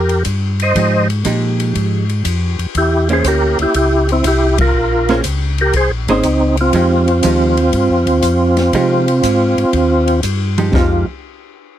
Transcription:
Already playing: F2 G4 A#4
0.09 ride
0.25 G2, kick, hi-hat pedal, ride
0.60 C5 D#5, ride
0.75 G#2 F3 G#3 D#4 G4, kick, ride
1.10 ride
1.25 A#2 F3 G#3 D#4 G4, kick, hi-hat pedal, ride
1.60 ride
1.75 G#2, kick, ride
2.09 ride
2.25 F2, kick, hi-hat pedal, ride
2.59 F2, ride
2.75 E2 E4 G4, kick, ride
3.09 A#3 C#4 E4 G#4, ride
3.13 C5
3.24 D2 G4 A#4, kick, hi-hat pedal, ride
3.59 D2 E4 G4, ride
3.74 C#2 E4 G4, kick, ride
4.09 C4, ride
4.13 E4
4.24 C2 E4 G4, kick, hi-hat pedal, ride
4.58 F4 A#4, kick, ride
4.74 A#1
5.09 A#3 C#4 G#4 C5, snare, ride
5.24 C#2, kick, hi-hat pedal, ride
5.58 G4 A#4, ride
5.73 C2 G#4 C5, kick, ride
5.91 A#1
6.07 G#1 A#3 C#4 D#4 G#4 C5, ride
6.12 C4
6.23 C#2, kick, hi-hat pedal, ride
6.57 C4 F4, ride
6.73 F2 F3 G#3 D#4 G4, kick, ride
7.08 ride
7.23 D#2 F3 G#3 D#4 G4, kick, hi-hat pedal, ride
7.57 ride
7.73 G2, kick, ride
7.90 F2
8.06 D#2, ride
8.22 F2, kick, hi-hat pedal, ride
8.57 snare, ride
8.73 C3 F3 G#3 D#4 G4, kick, ride
9.08 ride
9.23 G#2, kick, hi-hat pedal, ride
9.57 G#2, ride
9.73 D#2, kick, ride
10.08 ride
10.23 G2, kick, hi-hat pedal, ride
10.58 F3 G#3 D#4 G4, ride
10.73 F2 F3 G#3 D#4 F4 G4, kick, snare

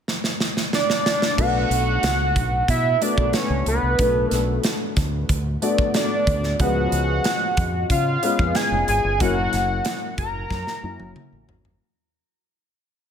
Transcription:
0.08 snare
0.24 snare
0.40 snare
0.57 snare
0.73 D5, snare
0.90 snare
1.06 snare
1.22 snare
1.37 B1 A3 B3 D4 F#4 B4 F#5, kick, crash
1.70 B1, closed hi-hat
2.03 C#2, snare, closed hi-hat
2.36 B1, kick, closed hi-hat
2.68 B2 E5, kick, closed hi-hat
3.01 A3 B3 D4 F#4 B4 D5, closed hi-hat
3.17 B1, kick
3.33 C#5, snare, closed hi-hat
3.50 C#2
3.66 C#2 B4, closed hi-hat
3.83 C2
3.99 B1 A3 B3 D4 F#4 B4, kick, closed hi-hat
4.31 B1 A4, snare, closed hi-hat
4.63 snare, closed hi-hat
4.96 D2, kick, snare, closed hi-hat
5.29 D2, kick, closed hi-hat
5.62 A3 B3 D4 F#4 D5, closed hi-hat
5.78 kick
5.94 D5, snare, closed hi-hat
6.27 D2, kick, closed hi-hat
6.43 snare
6.59 C#2 F3 G#3 B3 C#4 B4 F#5, kick, closed hi-hat
6.92 C#2, closed hi-hat
7.24 snare, closed hi-hat
7.57 F2, kick, closed hi-hat
7.90 C#3 F5, kick, closed hi-hat
8.23 G#3 B3 C#4 F4 B4, closed hi-hat
8.39 F2, kick
8.55 G#5, snare, closed hi-hat
8.72 F1
8.88 G#1 G#5, closed hi-hat
9.04 G1
9.20 F#1 F#3 A#3 C#4 E4 A#4 F#5, kick, closed hi-hat
9.53 F#1, snare, closed hi-hat
9.85 snare, closed hi-hat
10.18 F#1 A#5, kick, closed hi-hat
10.50 F#2, kick, snare
10.67 snare
10.83 F#2 F#3 A#3 C#4 E4 A#4
11.00 F#1, high tom
11.16 mid tom
11.32 A1
11.48 G#1, floor tom
11.65 G1, floor tom

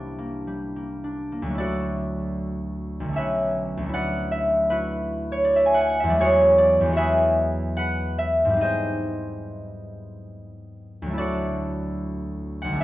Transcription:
Already playing: C2 C3 G3 A#3 D4 E4 G4 E5 G5
0.18 A#3
0.47 G3
0.76 A#3
1.04 D4
1.32 A#3
1.42 D2 F#3
1.50 A3
1.55 E4 D5
1.60 F#4 A4
3.00 B1
3.04 D3
3.09 A3
3.13 C#4 E5
3.18 B4 C#5
3.77 D2
3.81 F#3 A3
3.89 E4
3.94 B4 D5 F#5
4.31 E5
4.70 E4 F#4 B4
5.32 C#5
5.44 D5
5.56 E5
5.66 G#5
5.74 F#5
5.81 G#5
5.90 F#5
6.00 E2 E5
6.08 F#3 G#3 D5
6.21 F#4 G#4 C#5
6.58 D5
6.81 E2
6.85 F#3 G#3
6.93 F#4 E5
6.97 G#4 B4
7.77 B4 F#5
8.18 E5
8.45 G#2
8.49 G3
8.53 C4 D#4
8.61 G#4 C5 D#5
11.02 D2 F#3
11.10 A3 E4
11.18 F#4 A4 D5
12.62 B1 F#5
12.68 D3 A3
12.76 C#4
12.80 E5

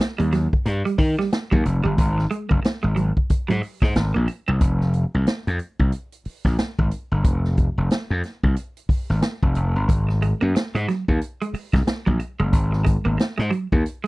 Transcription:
0.00 snare, closed hi-hat
0.18 D#2 G3, closed hi-hat
0.32 F#3, snare, closed hi-hat
0.53 kick
0.66 G2, closed hi-hat
0.85 G3, closed hi-hat
0.98 D#3, muted clean electric guitar stroke, kick, open hi-hat
1.19 G3, snare
1.33 snare, closed hi-hat
1.51 D#2 F#3, kick
1.64 F1, muted clean electric guitar stroke, closed hi-hat
1.84 G1 G3
1.98 G#1, kick, closed hi-hat
2.18 muted clean electric guitar stroke, snare
2.31 G#3, closed hi-hat
2.49 F#1 A#3, kick
2.62 muted clean electric guitar stroke, snare, closed hi-hat
2.83 G#1 G#3
2.96 F#3, closed hi-hat
3.17 kick
3.30 kick, closed hi-hat
3.48 G#2 F#3, closed hi-hat
3.62 muted clean electric guitar stroke, open hi-hat
3.82 G#2 G#3, kick, snare
3.96 G#1, snare, closed hi-hat
4.14 A#1 A#3
4.28 muted clean electric guitar stroke, closed hi-hat
4.48 C2 C4
4.61 F1, kick, closed hi-hat
4.81 snare
4.93 closed hi-hat
5.14 C2
5.27 snare, closed hi-hat
5.47 F2, closed hi-hat
5.59 closed hi-hat
5.79 C2, kick
5.92 closed hi-hat
6.12 closed hi-hat
6.25 muted slap bass stroke, open hi-hat
6.45 A#1, kick, snare
6.59 muted slap bass stroke, snare, closed hi-hat
6.79 G#1, kick
6.91 closed hi-hat
7.12 G1
7.24 F1, kick, closed hi-hat
7.45 snare
7.57 kick, closed hi-hat
7.78 F1
7.90 snare, closed hi-hat
8.10 F2
8.23 snare, closed hi-hat
8.43 C2, kick
8.56 closed hi-hat
8.77 closed hi-hat
8.89 muted slap bass stroke, kick, open hi-hat
9.10 G#1, snare
9.22 snare, closed hi-hat
9.43 F1, kick
9.55 F1, closed hi-hat
9.76 G1
9.89 G#1, kick, closed hi-hat
10.09 muted clean electric guitar stroke, snare
10.22 G#3, closed hi-hat
10.41 F#2 A#3
10.55 muted clean electric guitar stroke, muted slap bass stroke, snare, closed hi-hat
10.75 G#2 G#3, closed hi-hat
10.88 F#3, snare, closed hi-hat
11.08 D#2, kick
11.21 closed hi-hat
11.42 G#3, closed hi-hat
11.53 muted slap bass stroke, muted clean electric guitar stroke, open hi-hat
11.73 C2 G#3, kick, snare
11.87 snare, closed hi-hat
12.06 A#1 F#3, kick
12.20 muted clean electric guitar stroke, closed hi-hat
12.40 F#1 G#3
12.53 G#1, kick, closed hi-hat
12.72 muted clean electric guitar stroke, snare
12.85 G#3, kick, closed hi-hat
13.05 G#1 A#3
13.18 muted clean electric guitar stroke, muted slap bass stroke, snare, closed hi-hat
13.38 G#2 G#3, closed hi-hat
13.51 F#3, closed hi-hat
13.72 D#2, kick
13.86 closed hi-hat
14.04 G#3

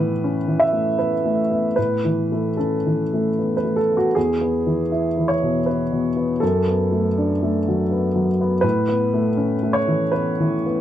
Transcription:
Already playing: A2 E3 B3 B4
0.24 C#4
0.48 E3
0.60 E5
0.73 A3
0.99 B3 B4
1.25 A3
1.50 B3
1.76 A2 B4
2.05 E3
2.32 A3
2.57 C#4 A4
2.87 E3
3.13 A3
3.39 B3
3.57 B4
3.65 A3
3.76 A4
3.92 B3
3.97 F#4
4.15 E2 G#4
4.41 B3
4.67 E3
4.92 E4
5.18 E3
5.28 C#5
5.42 B2
5.66 B3 B4
5.92 B2
6.17 B3
6.40 F#2 A4
6.68 B3
6.92 A3
7.18 D4
7.43 A3
7.68 F#3
7.91 B3
8.16 F#3
8.41 B3
8.61 A2 B4
8.89 B3
9.14 A3
9.37 C#4
9.63 A3
9.73 C#5
9.88 E3
10.12 B3 B4
10.40 E3
10.66 B3

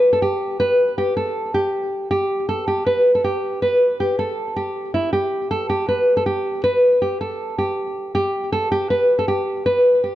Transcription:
Already playing: B4
0.13 A4
0.22 G4
0.60 B4
0.98 G4
1.17 A4
1.54 G4
2.11 G4
2.49 A4
2.68 G4
2.86 B4
3.15 A4
3.24 G4
3.62 B4
4.00 G4
4.19 A4
4.56 G4
4.94 E4
5.13 G4
5.51 A4
5.70 G4
5.88 B4
6.17 A4
6.26 G4
6.64 B4
7.02 G4
7.21 A4
7.58 G4
8.15 G4
8.52 A4
8.72 G4
8.90 B4
9.19 A4
9.28 G4
9.66 B4
10.04 G4

